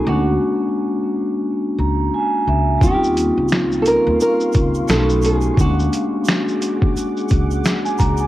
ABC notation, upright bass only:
X:1
M:4/4
L:1/16
Q:"Swing 16ths" 1/4=87
K:Bbdor
V:1 name="Upright bass" clef=bass
=D,,2 z8 ^C,,2 z2 C,,2 | E,,3 D,,4 E,, z2 D,,2 _C,,4 | =D,,2 z8 ^C,,2 z2 C,,2 |]